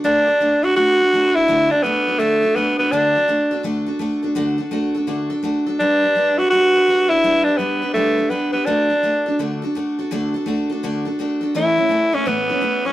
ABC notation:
X:1
M:4/4
L:1/8
Q:"Swing" 1/4=167
K:D
V:1 name="Steel-string acoustic guitar"
[D,A,DFA] [DFA] [A,DFA] [DFA] [D,A,DFA] D [A,DFA] [DFA] | [D,A,DFA] [DA] [A,DFA] [DFA] [D,A,DFA] [DFA] [A,DFA] [DFA] | [D,A,DFA] A [A,DFA] [DFA] [D,A,DFA] [DFA] [A,DFA] [DFA] | [D,A,DFA] [DFA] [A,DFA] [DFA] [D,A,DFA] [DFA] [A,DFA] [DFA] |
[G,DGB] [DGB] [G,DGB] [DGB] [G,DGB] [DGB] [G,DGB] [DGB] | [G,DGB] [DGB] [G,DGB] [DGB] [G,DGB] [DGB] [G,DGB] [DGB] | [D,A,DFA] [DFA] [A,DFA] [DFA] [D,A,DFA] [DFA] [A,DFA] [DFA] | [D,A,DFA] [FA] [A,DFA] [DFA] [D,A,DFA] [DFA] [A,DFA] [DFA] |
[A,,E,A,CEA] [A,CEA] [A,CEA] [A,CEA] [A,,E,A,CEA] [A,CEA] [A,CEA] [A,CEA] |]
V:2 name="Tenor saxophone"
D3 F F3 E- | E D B,2 A,2 B, B, | D4 z4 | z8 |
D3 F F3 E- | E D B,2 A,2 B, B, | D4 z4 | z8 |
E3 C B,3 C |]